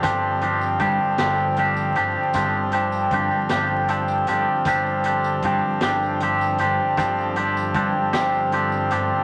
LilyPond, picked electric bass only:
\new Staff \with { instrumentName = "Picked electric bass" } { \clef bass \time 6/8 \tempo 4. = 52 g,,4 g,16 r16 g,,4 g,,16 r16 | g,,4 g,16 r16 g,,4 g,,16 r16 | g,,4 g,16 r16 g,,4 g,,16 r16 | g,,4 g,16 r16 g,,4 g,,16 r16 | }